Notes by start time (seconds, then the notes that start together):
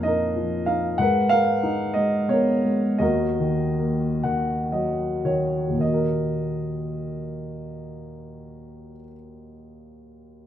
Already playing: F2 A#2 F3 D#4 F4 A#4 B4 C#5 D#5 F5
0.03 D#4 A#4 D#5
0.36 F3
0.66 D#4 F5
0.98 G#2 A#4 B4 F#5
1.29 G#3 A#4 B4 F5
1.63 D#4
1.94 G#3 D#5
2.28 B3 A#4 C#5
2.65 G#3
2.98 D#2 F#4 A#4 D#5
3.40 D#3
3.79 A#3
4.23 D#3 F#5
4.72 F#3 D#5
5.25 D#3 C#5
5.68 D#2
5.73 A#2
5.78 D#3 D#5
5.84 A#3
5.89 F#4
5.94 A#4